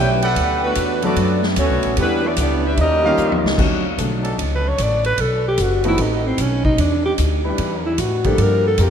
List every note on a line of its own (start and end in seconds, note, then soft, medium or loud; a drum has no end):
0.00 0.35 B1 medium
0.00 0.21 F#3 medium
0.00 0.21 A3 soft
0.00 0.21 B3 medium
0.00 0.21 C#4 medium
0.00 0.21 C#4 soft
0.00 0.20 E4 medium
0.00 0.21 E4 medium
0.00 0.21 G4 medium
0.00 0.22 B4 medium
0.00 0.22 C#5 medium
0.00 0.22 G5 medium
0.22 0.74 A4 medium
0.22 0.74 B4 medium
0.22 0.74 D5 medium
0.22 0.74 F#5 loud
0.22 ride medium
0.36 0.75 D2 medium
0.36 kick soft
0.36 ride medium
0.64 1.01 B2 medium
0.64 1.01 F#3 medium
0.64 1.01 A3 medium
0.64 1.01 B3 medium
0.64 1.01 D4 medium
0.64 1.01 F#4 medium
0.64 1.01 B4 medium
0.75 1.15 E2 medium
0.75 kick soft
0.75 hi-hat pedal medium
0.75 ride medium
1.02 1.54 F#3 medium
1.02 1.54 A3 medium
1.02 1.41 A3 medium
1.02 1.54 B3 medium
1.02 1.41 B3 medium
1.02 1.42 B3 medium
1.02 1.41 D4 medium
1.02 1.54 D4 medium
1.02 1.42 F#4 medium
1.02 1.54 A4 medium
1.02 1.42 A4 medium
1.02 1.42 D5 medium
1.02 ride soft
1.16 1.55 F#2 medium
1.16 kick soft
1.16 ride medium
1.43 snare medium
1.56 1.70 D2 medium
1.56 1.94 F#3 medium
1.56 1.95 A3 medium
1.56 1.95 B3 medium
1.56 1.95 C#4 medium
1.56 1.95 F#4 medium
1.56 1.95 A4 medium
1.56 1.95 C#5 medium
1.56 kick soft
1.56 hi-hat pedal medium
1.56 ride medium
1.70 1.83 B1 medium
1.83 1.96 A1 medium
1.83 ride soft
1.97 2.36 E2 medium
1.97 2.24 D3 medium
1.97 2.22 E3 medium
1.97 2.23 G3 medium
1.97 2.22 G3 medium
1.97 2.23 B3 medium
1.97 2.22 B3 medium
1.97 2.22 D4 medium
1.97 2.22 G4 medium
1.97 2.25 B4 loud
1.97 kick soft
1.97 ride medium
2.01 2.26 G3 medium
2.01 2.26 D4 medium
2.01 2.25 E4 medium
2.24 2.38 G3 medium
2.24 2.37 B3 medium
2.24 2.38 B3 medium
2.24 2.37 D4 medium
2.24 2.39 E4 medium
2.24 2.39 G4 medium
2.24 2.39 D5 medium
2.36 2.76 C#2 medium
2.36 2.63 G3 medium
2.36 2.62 B3 medium
2.36 2.63 D4 medium
2.36 2.64 E4 medium
2.36 2.63 G4 medium
2.36 2.64 D5 medium
2.36 kick soft
2.36 hi-hat pedal medium
2.36 ride medium
2.41 2.64 B3 medium
2.65 2.77 G3 medium
2.65 2.78 B3 medium
2.65 2.79 D4 medium
2.65 2.79 E4 medium
2.65 2.78 G4 medium
2.65 2.78 B4 medium
2.65 2.78 E5 loud
2.77 3.16 D#2 medium
2.77 3.41 G3 medium
2.77 3.40 A#3 medium
2.77 3.41 C#4 medium
2.77 3.40 D#4 medium
2.77 3.42 G4 medium
2.77 3.42 A#4 medium
2.77 3.41 D#5 loud
2.77 kick soft
2.77 ride medium
3.04 3.55 D#3 medium
3.04 3.55 G3 medium
3.04 3.55 A#3 medium
3.04 3.55 C#4 medium
3.04 3.56 F4 medium
3.04 3.55 G4 medium
3.04 3.55 C#5 medium
3.04 3.55 D#5 medium
3.04 3.55 F5 medium
3.17 3.31 F2 medium
3.17 hi-hat pedal soft
3.31 3.43 D#2 soft
3.31 high tom medium
3.44 3.57 C#2 medium
3.44 snare medium
3.58 3.97 D2 medium
3.58 3.82 D3 medium
3.58 3.82 F#3 medium
3.58 3.82 A3 medium
3.58 3.82 C#4 medium
3.58 3.82 F#4 medium
3.58 kick medium
3.58 crash medium
3.98 4.37 B1 medium
3.98 4.22 D3 soft
3.98 4.22 F#3 soft
3.98 4.22 A3 soft
3.98 4.22 C#4 soft
3.98 4.22 A4 medium
3.98 kick soft
3.98 hi-hat pedal medium
3.98 ride medium
4.22 4.75 F#3 medium
4.22 4.74 C#4 medium
4.22 4.74 D4 medium
4.22 4.75 A4 loud
4.22 ride soft
4.38 4.77 C#2 medium
4.38 kick soft
4.38 ride medium
4.55 4.70 B4 medium
4.68 4.83 C#5 medium
4.78 5.17 A1 medium
4.78 5.05 D5 loud
4.78 kick soft
4.78 hi-hat pedal medium
4.78 ride medium
5.04 5.22 B4 medium
5.04 ride soft
5.18 5.57 B1 medium
5.18 5.46 A4 medium
5.18 kick soft
5.18 ride medium
5.48 5.63 G4 medium
5.57 5.97 F#1 medium
5.57 kick soft
5.57 hi-hat pedal medium
5.57 ride medium
5.62 5.87 F#4 medium
5.84 5.97 D#3 medium
5.84 6.36 A3 medium
5.84 5.97 A3 medium
5.84 5.97 B3 medium
5.84 6.35 C4 medium
5.84 5.97 C4 medium
5.84 6.35 D#4 medium
5.84 5.97 F#4 medium
5.84 6.36 B4 medium
5.84 ride soft
5.88 6.03 E4 medium
5.98 6.37 A1 medium
5.98 6.28 D#4 medium
5.98 kick soft
5.98 ride medium
6.27 6.42 C4 medium
6.38 6.77 B1 medium
6.38 6.65 C#4 medium
6.38 kick soft
6.38 hi-hat pedal medium
6.38 ride medium
6.65 6.82 D#4 loud
6.65 kick medium
6.78 7.17 E2 medium
6.78 7.05 D4 medium
6.78 kick soft
6.78 ride medium
7.05 7.13 G4 medium
7.18 7.57 D2 medium
7.18 kick soft
7.18 hi-hat pedal medium
7.18 ride medium
7.43 7.95 G3 loud
7.43 7.96 D4 medium
7.43 7.95 E4 medium
7.43 7.95 B4 loud
7.58 7.97 E2 medium
7.58 kick soft
7.58 ride medium
7.86 8.02 E4 medium
7.98 8.37 A2 medium
7.98 8.28 F#4 medium
7.98 kick soft
7.98 hi-hat pedal medium
7.98 ride medium
8.24 8.76 F3 medium
8.24 8.76 G3 medium
8.24 8.76 A#3 medium
8.24 8.76 D4 medium
8.24 8.76 G4 medium
8.24 8.44 A4 medium
8.24 kick soft
8.24 ride soft
8.38 8.77 G2 medium
8.38 kick soft
8.38 ride medium
8.42 8.67 A#4 medium
8.67 8.84 A4 medium
8.78 8.90 F2 medium
8.78 8.90 G3 medium
8.78 8.90 D4 medium
8.78 8.90 F4 medium
8.78 8.90 A#4 medium
8.78 kick soft
8.78 hi-hat pedal medium
8.78 ride medium
8.82 8.90 G4 medium